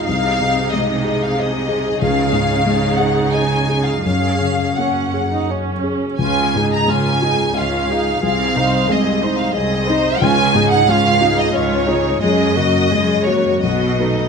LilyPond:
<<
  \new Staff \with { instrumentName = "Violin section" } { \time 3/4 \key des \major \tempo 4 = 89 f''4 ees''8. f''16 ees''4 | f''4. ges''8 aes''8. f''16 | f''4 ges''4 r4 | aes''8. bes''16 aes''4 f''4 |
f''4 ees''8. f''16 ees''4 | aes''8. ges''16 f''8. ees''16 des''4 | ees''4. des''8 ees''4 | }
  \new Staff \with { instrumentName = "Viola section" } { \time 3/4 \key des \major << { aes'2.~ | aes'2. | aes'4 des'8. ees'16 des'4 | f'8 aes'8 f'8 aes'8 f'8 aes'8 |
aes'8 c''8 aes'8 c''8 aes'8 c''8 | f'8 aes'8 f'8 aes'8 f'8 aes'8 | aes'8 ges'8 aes'8 ges'8 ges'8 ees'8 | } \\ { ees'2. | ees'2. | des'4 r2 | des'8 ees'8 des'8 ees'8 des'8 ees'8 |
c'8 ees'8 c'8 ees'8 c'8 ees'8 | des'8 ees'8 des'8 ees'8 des'8 ees'8 | aes8 bes8 aes8 bes8 ces'8 a8 | } >> }
  \new Staff \with { instrumentName = "Felt piano" } { \time 3/4 \key des \major c,8 c8 aes8 aes'8 ees''8 aes'8 | des,8 aes,8 aes8 aes'8 ees''8 aes'8 | ges,8 des8 bes8 aes'8 des''8 aes'8 | des,8 aes,8 aes8 f'8 ees''8 f'8 |
c,8 c8 aes8 ees'8 ees''8 ees'8 | des,8 aes,8 aes8 f'8 ees''8 f'8 | ges,8 des8 aes8 ges'8 ces,8 <ges' ces''>8 | }
  \new Staff \with { instrumentName = "Cello section" } { \clef bass \time 3/4 \key des \major c2. | des2. | ges,2~ ges,8 r8 | des,4 des,4 des,4 |
c,4 c,4 c,4 | des,4 des,4 des,4 | ges,4 ges,4 ces4 | }
>>